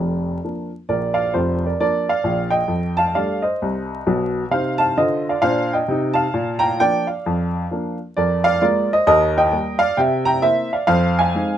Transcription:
upright piano
Already playing: F1 F2 F4 A#4
0.44 F3 A#3 D4
0.89 A#1 A#2 A#4 D5
1.14 D5 F5
1.34 F1 F2 F4 C5
1.66 A#4 D5
1.80 F3 A#3 D4 A#4 D5
2.09 D5 F5
2.24 A#1 A#2
2.50 D#5 G5
2.68 F2
2.97 F5 A5
3.15 G3 A3 D4 D5 F5
3.42 C5 D#5
3.62 C2
4.07 B1 B2
4.51 C3 D#4 C5 F5
4.78 F5 A5
4.97 D3 F4 C5 D#5
5.29 D5 F5
5.42 A#2 D4 C5 F5
5.73 D#5 G5
5.88 C3 D#4
6.14 F5 A5
6.34 A#2
6.59 G5 A#5
6.80 F3 A#3 D4 D5 G5
7.07 D5 F5
7.26 F2
7.71 F3 A#3 D4
8.17 F2 A#4 D5
8.44 D5 F5
8.61 G#3 A#3 F4 A#4 D5
8.93 C5 D#5
9.07 D#2 A#4 D#5
9.38 D#5 G5
9.52 G3 A#3 G4
9.79 D5 F5
9.97 C3 E5 G5
10.25 G5 A#5
10.42 A#3 C4 E4 C5 E5
10.73 D5 F5
10.87 F2 C5 F5
11.19 F5 G#5
11.35 G#3 C4 D#4

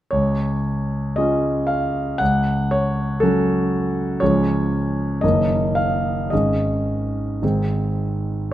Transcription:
grand piano
0.11 C#2 C#5
1.16 G#3 C#4 F4 D#5
1.67 F5
2.18 C#2 F#5
2.71 C#5
3.20 F#3 C#4 F#4 A4
4.20 C#2 F3 C#4 G#4 C#5
5.21 F#1 D#3 A#3 A#4 D#5
5.75 F5
6.30 G#1 D#3 C#4 G#4 D#5
7.42 G#1 D#3 C4 G#4

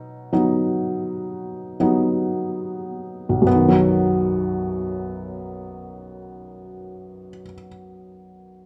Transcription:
felt piano
Already playing: B2 F#3 D#4
0.33 F#3 B3 D#4
1.80 F#3 B3 D#4
3.29 B1
3.42 F#2
3.47 B3
3.55 D#3
3.68 F#3

